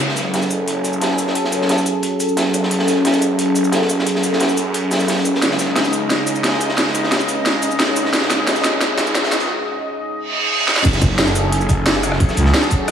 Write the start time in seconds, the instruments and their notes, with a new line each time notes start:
0.00 detuned saw bass F#1, analog synth pad F#3 C#4 G#4 A4
0.08 snare
0.17 snare, closed hi-hat, cabasa
0.34 snare, closed hi-hat, open hi-hat
0.42 cabasa
0.51 closed hi-hat, cabasa
0.68 closed hi-hat
0.84 detuned saw bass F#1, closed hi-hat, cabasa
0.93 cabasa
1.02 snare, closed hi-hat
1.10 snare
1.19 closed hi-hat, cabasa
1.27 snare
1.35 closed hi-hat
1.44 snare
1.52 detuned saw bass C#2, closed hi-hat, cabasa
1.61 snare
1.69 snare, closed hi-hat
1.78 cabasa
1.86 closed hi-hat, cabasa
2.03 closed hi-hat
2.20 closed hi-hat, cabasa
2.29 cabasa
2.37 snare, closed hi-hat
2.54 detuned saw bass E1, closed hi-hat, cabasa
2.63 snare
2.71 detuned saw bass F#1, closed hi-hat
2.79 snare
2.88 snare, closed hi-hat, cabasa
3.05 snare, closed hi-hat, open hi-hat
3.13 cabasa
3.22 closed hi-hat, cabasa
3.39 closed hi-hat
3.55 detuned saw bass F#1, closed hi-hat, cabasa
3.64 cabasa
3.72 snare, closed hi-hat
3.81 snare
3.90 closed hi-hat, cabasa
3.99 snare
4.07 closed hi-hat
4.15 snare
4.24 detuned saw bass C#2, closed hi-hat, cabasa
4.33 snare
4.40 detuned saw bass F#2, snare, closed hi-hat
4.49 cabasa
4.57 closed hi-hat, cabasa
4.74 closed hi-hat
4.91 detuned saw bass E1, snare, closed hi-hat, open hi-hat, cabasa
5.00 cabasa
5.08 snare, closed hi-hat, open hi-hat
5.25 closed hi-hat, cabasa
5.35 snare
5.42 detuned saw bass C#2, analog synth pad C#3 G#3 D#4 D#5, snare, closed hi-hat, riser
5.51 snare
5.59 snare, closed hi-hat, cabasa
5.76 snare, closed hi-hat, open hi-hat
5.85 cabasa
5.92 closed hi-hat, cabasa
6.10 snare, closed hi-hat
6.27 detuned saw bass C#2, closed hi-hat, cabasa
6.35 cabasa
6.44 snare, closed hi-hat
6.53 snare
6.60 closed hi-hat, cabasa
6.69 snare
6.77 snare, closed hi-hat
6.87 snare
6.94 detuned saw bass G#1, closed hi-hat, cabasa
7.03 snare
7.11 snare, closed hi-hat
7.20 cabasa
7.28 closed hi-hat, cabasa
7.45 snare, closed hi-hat
7.63 closed hi-hat, cabasa
7.71 cabasa
7.79 snare, closed hi-hat
7.96 detuned saw bass B1, closed hi-hat, cabasa
8.05 snare
8.13 detuned saw bass C#2, snare, closed hi-hat
8.22 snare
8.30 snare, closed hi-hat, cabasa
8.47 snare, closed hi-hat, open hi-hat
8.56 cabasa
8.64 snare, closed hi-hat, cabasa
8.81 snare, closed hi-hat
8.98 detuned saw bass C#2, snare, closed hi-hat, cabasa
9.07 cabasa
9.15 snare, closed hi-hat
9.23 snare, closed hi-hat
9.32 snare, closed hi-hat, cabasa
9.40 closed hi-hat
10.17 reverse cymbal
10.68 snare
10.76 snare
10.85 detuned saw bass F#1, analog synth pad F#3 C#4 G#4 A4, kick, closed hi-hat, crash
10.93 snare, cabasa
11.02 kick, snare, closed hi-hat, cabasa
11.19 snare, closed hi-hat, open hi-hat
11.27 cabasa
11.35 closed hi-hat, cabasa
11.52 closed hi-hat
11.61 cabasa
11.69 detuned saw bass F#1, kick, closed hi-hat, cabasa
11.86 snare, closed hi-hat
11.95 snare
12.03 cross-stick, closed hi-hat, cabasa
12.12 cross-stick, snare
12.20 kick, closed hi-hat
12.29 snare, cabasa
12.37 fm bass C#2, closed hi-hat, cabasa
12.45 snare
12.54 snare, closed hi-hat
12.63 cabasa
12.70 kick, closed hi-hat, cabasa
12.88 cross-stick, closed hi-hat